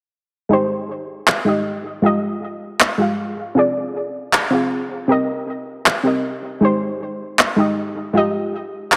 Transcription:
0.49 synth pluck G#3 D#4 G4
0.53 synth pluck C5
1.27 clap
1.45 synth pluck G#3 D#4 G4
1.49 synth pluck D#5
2.02 synth pluck G#3 F4 G4
2.06 synth pluck D#5
2.80 clap
2.98 synth pluck G#3 F4 G4 F5
3.55 synth pluck C4 F4 G#4 D5
4.33 clap
4.50 synth pluck C4 F4 G#4
4.54 synth pluck F5
5.08 synth pluck C4 G4 A#4
5.12 synth pluck D#5
5.86 clap
6.03 synth pluck C4 G4 A#4 D#5
6.61 synth pluck G#3 D#4 G4
6.65 synth pluck C5
7.39 clap
7.56 synth pluck G#3 D#4 G4
7.60 synth pluck D#5
8.13 synth pluck G#3 F4 G4
8.17 synth pluck D#5
8.92 clap

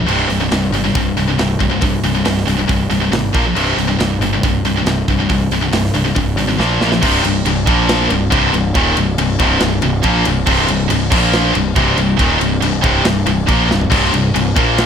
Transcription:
0.06 picked electric bass C1, distorted electric guitar C2 G2 C3, crash
0.28 picked electric bass C1, distorted electric guitar C2 G2, open hi-hat
0.40 distorted electric guitar C2 G2
0.51 picked electric bass C1, distorted electric guitar C2 G2, snare, open hi-hat
0.72 picked electric bass G1, distorted electric guitar C2 G2, open hi-hat
0.84 distorted electric guitar C2 G2
0.95 picked electric bass C1, distorted electric guitar C2 G2, kick, open hi-hat
1.17 picked electric bass C1, distorted electric guitar C2 G2, open hi-hat
1.28 distorted electric guitar C2 G2
1.38 picked electric bass C1, distorted electric guitar C2 G2, snare, open hi-hat
1.59 picked electric bass C1, distorted electric guitar C2 G2, kick, open hi-hat
1.70 distorted electric guitar C2 G2
1.81 picked electric bass C1, distorted electric guitar C2 G2, kick, open hi-hat
2.04 picked electric bass C1, distorted electric guitar C2 G2, open hi-hat
2.15 distorted electric guitar C2 G2
2.25 picked electric bass C1, distorted electric guitar C2 G2, snare, open hi-hat
2.38 snare
2.47 picked electric bass C1, distorted electric guitar C2 G2, open hi-hat
2.59 distorted electric guitar C2 G2
2.68 picked electric bass C1, distorted electric guitar C2 G2, kick, open hi-hat
2.90 picked electric bass C1, distorted electric guitar C2 G2, open hi-hat
3.02 distorted electric guitar C2 G2
3.12 picked electric bass G#1, distorted electric guitar C2 G2, snare, open hi-hat
3.34 picked electric bass A#1, distorted electric guitar A#2 F3 A#3, kick, open hi-hat
3.45 distorted electric guitar A#2 F3
3.55 picked electric bass C1, distorted electric guitar C2 G2 C3, crash
3.77 picked electric bass C1, distorted electric guitar C2 G2, open hi-hat
3.88 distorted electric guitar C2 G2
3.99 picked electric bass C1, distorted electric guitar C2 G2, snare, open hi-hat
4.20 picked electric bass G1, distorted electric guitar C2 G2, open hi-hat
4.33 distorted electric guitar C2 G2
4.43 picked electric bass C1, distorted electric guitar C2 G2, kick, open hi-hat
4.63 picked electric bass C1, distorted electric guitar C2 G2, open hi-hat
4.77 distorted electric guitar C2 G2
4.85 picked electric bass C1, distorted electric guitar C2 G2, snare, open hi-hat
5.08 picked electric bass C1, distorted electric guitar C2 G2, kick, open hi-hat
5.20 distorted electric guitar C2 G2
5.30 picked electric bass C1, distorted electric guitar C2 G2, kick, open hi-hat
5.50 picked electric bass C1, distorted electric guitar C2 G2, open hi-hat
5.61 distorted electric guitar C2 G2
5.72 picked electric bass C1, distorted electric guitar C2 G2, snare, open hi-hat
5.85 snare
5.94 picked electric bass C1, distorted electric guitar C2 G2, open hi-hat
6.05 distorted electric guitar C2 G2
6.15 picked electric bass C1, distorted electric guitar C2 G2, kick, open hi-hat
6.37 picked electric bass G#1, distorted electric guitar C2 G2, open hi-hat
6.47 distorted electric guitar C2 G2
6.59 picked electric bass A#1, distorted electric guitar A#2 F3 A#3, snare
6.80 picked electric bass A#1, distorted electric guitar A#2 F3 A#3, snare
6.92 distorted electric guitar A#2 F3, snare
7.02 picked electric bass C1, distorted electric guitar C2 G2 C3, kick, crash
7.23 picked electric bass C1, distorted electric guitar C2 G2, ride
7.45 picked electric bass C1, distorted electric guitar C2 G2, ride
7.67 picked electric bass A#1, distorted electric guitar A#2 F3 A#3, kick, ride
7.89 snare, ride
8.10 picked electric bass C1, distorted electric guitar C2 G2, ride
8.30 picked electric bass C1, distorted electric guitar C2 G2 C3, kick, ride
8.53 picked electric bass C1, distorted electric guitar C2 G2, ride
8.75 picked electric bass D#1, distorted electric guitar D#2 A#2 D#3, kick, ride
8.97 picked electric bass C1, distorted electric guitar C2 G2, ride
9.18 picked electric bass C1, distorted electric guitar C2 G2, ride
9.39 picked electric bass C1, distorted electric guitar C2 G2 C3, kick, ride
9.60 picked electric bass C1, distorted electric guitar C2 G2, snare, ride
9.82 picked electric bass C1, distorted electric guitar C2 G2, ride
10.03 picked electric bass A#1, distorted electric guitar A#2 F3 A#3, kick, ride
10.25 picked electric bass C1, distorted electric guitar C2 G2, ride
10.46 picked electric bass C1, distorted electric guitar C2 G2 C3, kick, crash
10.68 picked electric bass C1, distorted electric guitar C2 G2, ride
10.90 picked electric bass C1, distorted electric guitar C2 G2, ride
11.12 picked electric bass A#1, distorted electric guitar A#2 F3 A#3, kick, crash
11.34 snare
11.54 picked electric bass C1, distorted electric guitar C2 G2, ride
11.76 picked electric bass C1, distorted electric guitar C2 G2 C3, kick, ride
11.97 picked electric bass C1, distorted electric guitar C2 G2, ride
12.19 picked electric bass D#1, distorted electric guitar D#2 A#2 D#3, kick, ride
12.40 picked electric bass C1, distorted electric guitar C2 G2, ride
12.62 picked electric bass C1, distorted electric guitar C2 G2, ride
12.83 picked electric bass C1, distorted electric guitar C2 G2 C3, kick, ride
13.04 picked electric bass C1, distorted electric guitar C2 G2, snare, ride
13.26 picked electric bass C1, distorted electric guitar C2 G2, ride
13.47 picked electric bass A#1, distorted electric guitar A#2 F3 A#3, kick, ride
13.70 picked electric bass C1, distorted electric guitar C2 G2, snare
13.81 floor tom
13.90 picked electric bass C1, distorted electric guitar C2 G2 C3, kick, crash
14.12 picked electric bass C1, distorted electric guitar C2 G2, ride
14.34 picked electric bass C1, distorted electric guitar C2 G2, ride
14.56 picked electric bass A#1, distorted electric guitar A#2 F3 A#3, kick, ride
14.78 snare, ride

